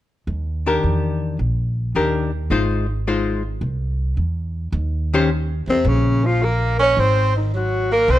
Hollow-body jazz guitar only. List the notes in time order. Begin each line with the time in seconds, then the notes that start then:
0.66 D#3 D4 G4 A#4
1.96 D#3 D4 G4 A#4
2.51 G#3 D#4 F4 C5
3.07 G#3 D#4 F4 C5
5.14 D#3 C#4 G4 C5